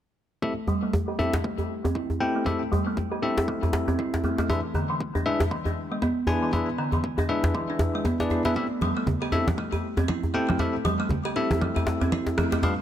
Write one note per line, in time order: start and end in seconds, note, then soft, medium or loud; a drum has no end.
0.42 0.56 A3 medium
0.42 0.53 C4 medium
0.42 0.53 E4 medium
0.42 0.53 G4 medium
0.42 0.53 A4 medium
0.42 0.53 E5 medium
0.42 kick loud
0.68 0.76 G3 medium
0.68 djembe tone medium
0.83 0.92 A3 medium
0.93 kick loud
0.93 djembe tone medium
1.08 1.18 G4 medium
1.19 1.34 C4 medium
1.19 1.32 D4 medium
1.19 1.35 E4 medium
1.19 1.35 G4 medium
1.19 1.35 A4 medium
1.19 1.35 E5 medium
1.19 djembe tone medium
1.34 djembe slap loud
1.44 1.57 A3 medium
1.44 kick loud
1.58 1.69 G4 medium
1.58 djembe tone medium
1.84 1.94 C4 medium
1.84 djembe tone medium
1.95 2.03 E4 medium
1.95 kick loud
2.10 djembe tone medium
2.20 2.34 A3 medium
2.20 2.44 C4 medium
2.20 2.44 E4 medium
2.20 2.44 G4 medium
2.20 2.43 A4 medium
2.20 2.43 G5 medium
2.35 2.45 A3 medium
2.46 2.59 A3 medium
2.46 2.62 C4 medium
2.46 2.62 E4 medium
2.46 2.62 G4 medium
2.46 2.62 A4 medium
2.46 2.62 E5 medium
2.46 kick loud
2.46 djembe tone medium
2.72 2.80 G3 medium
2.72 djembe tone medium
2.86 2.96 A3 medium
2.97 kick loud
2.97 djembe tone medium
3.12 3.21 G4 medium
3.22 4.47 C4 medium
3.22 3.36 D4 medium
3.22 4.47 E4 medium
3.22 4.47 G4 medium
3.22 4.47 A4 medium
3.22 4.47 E5 medium
3.38 djembe slap medium
3.38 djembe tone medium
3.48 3.61 A3 medium
3.48 kick loud
3.63 3.72 G4 medium
3.63 djembe tone medium
3.73 djembe slap loud
3.88 3.98 C4 medium
3.88 djembe tone medium
3.99 4.07 E4 medium
3.99 kick loud
4.14 djembe slap medium
4.24 4.37 A3 medium
4.24 djembe tone medium
4.38 4.48 A3 medium
4.38 djembe slap medium
4.50 4.63 E3 medium
4.50 4.59 D4 medium
4.50 4.59 E4 medium
4.50 4.60 G#4 medium
4.50 4.60 B4 medium
4.50 4.60 E5 medium
4.50 kick loud
4.50 djembe tone medium
4.74 4.83 D3 medium
4.74 djembe tone medium
4.90 4.99 E3 medium
5.00 kick loud
5.15 5.25 D4 medium
5.15 djembe tone medium
5.26 5.39 G#3 medium
5.26 5.41 D4 medium
5.26 5.41 E4 medium
5.26 5.41 G#4 medium
5.26 5.41 B4 medium
5.26 5.41 E5 medium
5.40 djembe slap medium
5.40 djembe tone medium
5.51 5.65 E3 medium
5.51 kick loud
5.65 5.76 D4 medium
5.65 djembe tone medium
5.92 6.01 G#3 medium
6.02 6.10 B3 medium
6.02 kick loud
6.02 djembe tone medium
6.27 6.41 E3 medium
6.27 6.50 D4 medium
6.27 6.50 E4 medium
6.27 6.50 G#4 medium
6.27 6.50 B4 medium
6.27 6.50 G#5 medium
6.27 djembe tone medium
6.42 6.52 E3 medium
6.53 6.66 E3 medium
6.53 6.68 D4 medium
6.53 6.68 E4 medium
6.53 6.68 G#4 medium
6.53 6.68 B4 medium
6.53 6.68 E5 medium
6.53 kick loud
6.53 djembe tone medium
6.78 6.86 D3 medium
6.92 7.03 E3 medium
6.92 djembe tone medium
7.04 kick loud
7.18 7.28 D4 medium
7.18 djembe tone medium
7.29 7.43 G#3 medium
7.29 8.17 D4 medium
7.29 8.17 E4 medium
7.29 8.17 G#4 medium
7.29 8.17 B4 medium
7.29 8.17 E5 medium
7.44 djembe slap medium
7.44 djembe tone medium
7.55 7.68 E3 medium
7.55 kick loud
7.70 7.79 D4 medium
7.79 djembe slap medium
7.79 djembe tone medium
7.95 8.05 G#3 medium
8.05 8.19 B3 medium
8.05 kick loud
8.05 djembe tone medium
8.20 8.42 D4 medium
8.20 8.42 E4 medium
8.20 8.42 G#4 medium
8.20 8.42 B4 medium
8.20 8.42 D5 medium
8.20 djembe slap medium
8.30 8.44 E4 medium
8.30 djembe tone medium
8.45 8.56 B3 medium
8.45 8.54 D4 medium
8.45 8.54 E4 medium
8.45 8.54 G#4 medium
8.45 8.54 B4 medium
8.45 8.54 E5 medium
8.45 djembe slap medium
8.56 8.70 A3 medium
8.56 8.66 C4 medium
8.56 8.66 E4 medium
8.56 8.66 G4 medium
8.56 8.66 A4 medium
8.56 8.66 E5 medium
8.56 kick loud
8.81 8.90 G3 medium
8.81 djembe tone medium
8.81 high conga medium
8.97 9.06 A3 medium
9.07 kick loud
9.07 djembe tone medium
9.07 low conga medium
9.22 9.31 G4 medium
9.32 9.48 C4 medium
9.32 9.46 D4 medium
9.32 9.48 E4 medium
9.32 9.48 G4 medium
9.32 9.48 A4 medium
9.32 9.48 E5 medium
9.32 djembe tone medium
9.48 djembe slap loud
9.48 high conga medium
9.58 9.71 A3 medium
9.58 kick loud
9.72 9.82 G4 medium
9.72 djembe tone medium
9.97 10.08 C4 medium
9.97 djembe tone medium
10.08 10.17 E4 medium
10.08 kick loud
10.08 high conga medium
10.23 djembe tone medium
10.34 10.47 A3 medium
10.34 10.57 C4 medium
10.34 10.57 E4 medium
10.34 10.57 G4 medium
10.34 10.57 A4 medium
10.34 10.57 G5 medium
10.49 10.58 A3 medium
10.49 high conga loud
10.59 10.73 A3 medium
10.59 10.75 C4 medium
10.59 10.75 E4 medium
10.59 10.75 G4 medium
10.59 10.75 A4 medium
10.59 10.75 E5 medium
10.59 kick loud
10.59 djembe tone medium
10.85 10.93 G3 medium
10.85 djembe tone medium
10.85 high conga medium
11.00 11.09 A3 medium
11.09 kick loud
11.09 djembe tone medium
11.09 low conga medium
11.25 11.35 G4 medium
11.36 12.61 C4 medium
11.36 11.49 D4 medium
11.36 12.61 E4 medium
11.36 12.61 G4 medium
11.36 12.61 A4 medium
11.36 12.61 E5 medium
11.51 djembe slap medium
11.51 high conga medium
11.51 djembe tone medium
11.61 11.75 A3 medium
11.61 kick loud
11.61 high conga medium
11.76 11.86 G4 medium
11.76 djembe tone medium
11.87 djembe slap loud
12.01 12.11 C4 medium
12.01 djembe tone medium
12.12 12.20 E4 medium
12.12 kick loud
12.12 high conga medium
12.27 djembe slap medium
12.38 12.51 A3 medium
12.38 cross-stick medium
12.38 djembe tone medium
12.38 high conga medium
12.52 12.62 A3 medium
12.52 djembe slap medium
12.63 12.76 G3 medium
12.63 12.73 D4 medium
12.63 12.73 F4 medium
12.63 12.73 G4 medium
12.63 12.73 B4 medium
12.63 12.73 F5 medium
12.63 kick loud
12.63 djembe tone medium